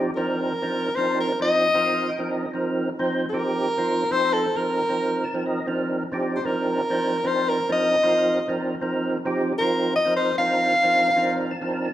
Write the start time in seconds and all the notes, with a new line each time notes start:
Already playing: F3 C4 D4 D#4 G4
0.15 F3 C4 D4 D#4 A#4
0.62 F3 C4 D4 D#4 A#4
0.95 F3 C4 D4 D#4 A#4 C5
1.20 A#4
1.40 F3 C4 D4 D#4 F4 D#5
1.74 F3 C4 D#4 F4 A#4
2.09 G5
2.18 F3 C4 D4 D#4 A#4
2.31 D#5
2.53 F3 C4 D#4 A#4
2.99 F3 C4 D#4 C5
3.29 F3 C4 A#4
3.34 D#4 G4
3.78 F3 C4 D#4 F4
4.11 F3 C4 D#4 A4 C5
4.33 A4
4.55 F3 C4 D#4 A#4
4.89 F3 C4 D#4 A#4
5.24 A5
5.34 F3 C4 D#4 A#4
5.46 D#5
5.67 F3 C4 D4 D#4 A#4
6.12 F3 C4 D4 D#4 G4
6.36 C5
6.45 F3 C4 D4 D#4 A#4
6.90 F3 C4 D4 D#4 C5
7.24 F3 C4 D4 D#4 A#4 C5
7.49 A#4
7.69 F3 C4 D4 D#4 A#4 D#5
8.03 F3 C4 D#4 F4 A#4
8.48 F3 C4 D4 D#4 A#4
8.81 F3 C4 D#4 A#4
9.25 F3 C4 D#4 G4
9.58 F3 C4 D#4 F4 A#4
9.95 D#5
10.05 F3 C4 D#4 A#4
10.16 C5
10.38 F3 C4 D4 D#4 A#4 F5
10.83 F3 C4 D4 D#4 A#4
11.16 F3 C4 D4 D#4 A#4
11.51 A5
11.61 F3 C4 D4 D#4 A#4